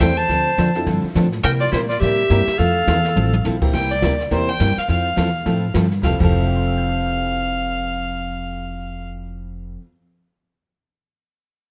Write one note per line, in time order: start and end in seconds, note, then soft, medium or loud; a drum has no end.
0.00 0.28 E2 loud
0.00 0.11 E3 medium
0.00 0.12 G3 medium
0.00 0.16 A3 medium
0.00 0.16 C4 medium
0.00 0.12 C4 medium
0.00 0.16 E4 medium
0.00 0.12 E4 medium
0.00 0.16 G4 medium
0.00 0.16 A4 medium
0.00 0.12 A4 medium
0.00 0.18 C5 medium
0.00 0.18 G5 loud
0.00 kick soft
0.00 snare medium
0.00 hi-hat pedal medium
0.17 0.75 C5 medium
0.17 0.75 A5 loud
0.29 0.57 D2 medium
0.29 0.48 D3 medium
0.29 0.49 F3 medium
0.29 0.49 C4 medium
0.29 0.49 D4 medium
0.29 0.49 A4 medium
0.29 brush sweep soft
0.29 kick soft
0.29 snare soft
0.57 0.86 F2 medium
0.57 0.68 D3 medium
0.57 0.69 F3 medium
0.57 0.69 C4 medium
0.57 0.69 D4 medium
0.57 0.69 A4 medium
0.57 kick soft
0.57 snare medium
0.57 hi-hat pedal medium
0.75 1.13 C4 medium
0.75 1.13 D4 medium
0.75 1.13 E4 medium
0.75 1.13 F4 medium
0.75 1.13 A4 medium
0.75 snare soft
0.86 1.03 G2 medium
0.86 1.06 D3 medium
0.86 1.06 F3 medium
0.86 1.06 C4 medium
0.86 1.06 D4 medium
0.86 1.06 A4 medium
0.86 brush sweep medium
0.86 kick soft
0.86 snare medium
1.04 muted upright bass stroke soft
1.15 1.43 A2 loud
1.15 1.26 D3 medium
1.15 1.26 F3 medium
1.15 1.26 C4 medium
1.15 1.26 D4 medium
1.15 1.26 A4 medium
1.15 kick soft
1.15 snare medium
1.15 hi-hat pedal medium
1.32 snare soft
1.43 1.63 C3 soft
1.43 1.72 C3 medium
1.43 1.63 G3 medium
1.43 1.63 A#3 medium
1.43 1.63 E4 medium
1.43 1.64 G4 medium
1.43 1.52 A#4 medium
1.43 1.51 G5 loud
1.43 brush sweep soft
1.43 kick soft
1.43 snare soft
1.60 1.71 F4 medium
1.60 1.72 D5 medium
1.71 2.00 A#2 medium
1.71 1.83 C3 medium
1.71 1.83 G3 medium
1.71 1.84 A#3 medium
1.71 1.79 E4 medium
1.71 1.84 E4 medium
1.71 1.84 G4 medium
1.71 1.80 C5 loud
1.71 kick soft
1.71 snare medium
1.71 hi-hat pedal medium
1.88 1.99 F4 medium
1.88 2.00 D5 medium
1.88 snare soft
2.00 2.29 A2 medium
2.00 2.21 C3 soft
2.00 2.21 G3 medium
2.00 2.21 A#3 medium
2.00 2.21 E4 medium
2.00 2.59 G4 medium
2.00 2.21 G4 medium
2.00 2.59 E5 loud
2.00 brush sweep soft
2.00 kick soft
2.00 snare soft
2.30 2.46 G2 medium
2.30 2.41 C3 medium
2.30 2.41 G3 medium
2.30 2.41 A#3 medium
2.30 2.46 A#3 medium
2.30 2.46 C4 medium
2.30 2.41 E4 medium
2.30 2.46 E4 medium
2.30 2.41 G4 medium
2.30 2.46 G4 medium
2.30 2.46 A#4 medium
2.30 kick soft
2.30 snare medium
2.30 hi-hat pedal medium
2.47 muted upright bass stroke soft
2.47 snare medium
2.58 2.87 F2 medium
2.58 2.78 F3 medium
2.58 3.01 A3 medium
2.58 3.01 C4 medium
2.58 2.78 C4 medium
2.58 2.79 E4 medium
2.58 3.01 F4 medium
2.58 3.44 A4 medium
2.58 3.01 A4 medium
2.58 2.79 A4 medium
2.58 3.44 F5 loud
2.58 brush sweep soft
2.58 kick soft
2.58 snare soft
2.87 3.15 E2 loud
2.87 2.98 F3 medium
2.87 2.98 C4 medium
2.87 2.98 E4 medium
2.87 2.99 A4 medium
2.87 kick soft
2.87 snare medium
2.87 hi-hat pedal medium
3.05 snare soft
3.15 3.44 A1 loud
3.15 3.35 F3 medium
3.15 3.35 C4 medium
3.15 3.35 E4 medium
3.15 3.35 A4 medium
3.15 high tom medium
3.33 high tom medium
3.44 3.73 A#1 loud
3.44 3.55 F3 medium
3.44 3.56 C4 medium
3.44 3.56 E4 medium
3.44 3.56 A4 medium
3.44 snare medium
3.44 hi-hat pedal medium
3.62 4.00 A#3 medium
3.62 4.00 C4 medium
3.62 4.00 E4 medium
3.62 4.00 G4 medium
3.62 4.00 C5 medium
3.62 kick medium
3.62 crash medium
3.72 4.01 C2 medium
3.72 3.92 C3 medium
3.72 3.92 G3 soft
3.72 3.93 A#3 medium
3.72 3.93 E4 medium
3.72 3.93 G4 medium
3.72 3.92 G5 loud
3.72 brush sweep soft
3.72 kick soft
3.72 snare soft
3.91 4.19 D5 loud
4.02 4.30 D2 medium
4.02 4.13 C3 medium
4.02 4.13 G3 medium
4.02 4.13 A#3 medium
4.02 4.14 E4 medium
4.02 4.14 G4 medium
4.02 kick soft
4.02 snare medium
4.02 hi-hat pedal medium
4.20 snare soft
4.30 4.59 E2 medium
4.30 4.50 C3 medium
4.30 4.50 G3 medium
4.30 4.46 A#3 medium
4.30 4.50 A#3 medium
4.30 4.47 C4 medium
4.30 4.50 E4 medium
4.30 4.47 E4 medium
4.30 4.47 G4 medium
4.30 4.51 G4 medium
4.30 4.47 A#4 medium
4.30 4.51 C5 medium
4.30 brush sweep soft
4.30 kick soft
4.30 snare soft
4.49 4.80 G5 loud
4.59 4.76 G2 medium
4.59 4.70 C3 medium
4.59 4.70 G3 medium
4.59 4.71 A#3 medium
4.59 4.71 E4 medium
4.59 4.71 G4 medium
4.59 kick soft
4.59 snare medium
4.59 hi-hat pedal medium
4.77 4.89 F5 loud
4.77 muted upright bass stroke soft
4.77 snare soft
4.87 5.16 F2 medium
4.87 5.07 F3 medium
4.87 5.07 C4 medium
4.87 5.08 E4 medium
4.87 5.08 A4 medium
4.87 5.71 F5 medium
4.87 brush sweep soft
4.87 kick soft
4.87 snare soft
5.16 5.45 E2 medium
5.16 5.27 F3 medium
5.16 5.27 C4 medium
5.16 5.28 E4 medium
5.16 5.28 A4 medium
5.16 kick soft
5.16 snare medium
5.16 hi-hat pedal medium
5.46 5.74 A2 loud
5.46 5.65 F3 medium
5.46 5.61 A3 medium
5.46 5.61 C4 medium
5.46 5.65 C4 medium
5.46 5.61 E4 medium
5.46 5.65 E4 medium
5.46 5.62 F4 medium
5.46 5.62 A4 medium
5.46 5.65 A4 medium
5.46 brush sweep soft
5.46 kick soft
5.46 snare soft
5.74 6.02 G2 medium
5.74 5.85 F3 medium
5.74 5.86 C4 medium
5.74 5.86 E4 medium
5.74 5.86 A4 medium
5.74 kick soft
5.74 snare medium
5.74 hi-hat pedal medium
5.92 snare soft
6.02 6.13 F1 medium
6.02 6.13 F2 medium
6.02 6.19 F3 medium
6.02 6.13 F3 medium
6.02 6.21 C4 medium
6.02 6.14 E4 medium
6.02 6.23 E4 medium
6.02 6.14 G4 medium
6.02 6.14 A4 medium
6.02 6.13 F5 medium
6.02 kick soft
6.02 snare medium
6.06 6.23 A4 medium
6.19 9.75 F1 medium
6.19 9.77 F2 medium
6.19 9.79 E3 medium
6.19 9.78 F3 medium
6.19 9.80 C4 medium
6.19 9.80 G4 medium
6.19 9.80 A4 medium
6.19 9.09 F5 medium
6.19 kick medium
6.19 crash medium
6.23 9.82 A4 medium
6.32 9.79 C5 soft
6.40 9.83 E5 soft
6.48 9.87 G5 soft
6.57 9.92 C6 soft
6.67 9.97 E6 soft
6.78 10.02 G6 soft
6.89 10.08 C7 soft